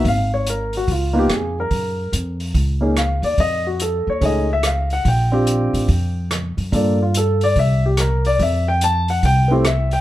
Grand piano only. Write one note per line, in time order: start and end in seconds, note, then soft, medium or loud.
0.08 0.33 F5 medium
0.34 0.47 C#5 medium
0.50 0.74 A#4 medium
0.77 0.89 F#4 medium
0.92 1.13 F4 medium
1.13 1.27 A#3 medium
1.13 1.28 B3 medium
1.13 1.28 D#4 medium
1.13 1.28 F4 medium
1.19 1.31 G4 medium
1.34 1.58 G#4 medium
1.60 2.11 A#4 medium
2.81 2.94 A#3 medium
2.81 2.95 C#4 soft
2.81 2.95 D#4 soft
2.81 2.95 G#4 medium
2.98 3.24 F5 medium
3.24 3.38 D5 medium
3.40 3.66 D#5 medium
3.67 3.80 F#4 medium
3.82 4.07 A4 medium
4.10 4.23 C#5 medium
4.21 4.46 A3 soft
4.21 4.46 C#4 soft
4.21 4.46 D#4 soft
4.21 4.47 G#4 medium
4.25 4.50 D#5 medium
4.53 4.65 E5 medium
4.66 4.91 F5 medium
4.93 5.06 F#5 medium
5.08 6.28 G5 medium
5.32 5.86 C4 medium
5.32 5.86 D4 soft
5.32 5.86 F4 soft
5.32 5.86 G4 medium
6.72 6.97 A#3 soft
6.72 6.97 D4 soft
6.72 6.97 F4 soft
6.72 6.97 A4 medium
6.72 7.00 D5 medium
7.02 7.15 F4 medium
7.17 7.42 A4 medium
7.44 7.57 D5 medium
7.59 7.84 E5 medium
7.86 7.99 G4 medium
8.00 8.25 A#4 medium
8.27 8.40 D5 medium
8.43 8.67 E5 medium
8.68 8.82 G5 medium
8.84 9.09 A5 medium
9.10 9.23 F#5 medium
9.25 9.50 G5 medium
9.48 9.64 A3 medium
9.48 9.64 C4 medium
9.48 9.64 E4 medium
9.48 9.50 B4 soft
9.52 9.64 G4 medium
9.52 9.65 C5 medium
9.66 9.92 E5 medium
9.93 10.01 G5 medium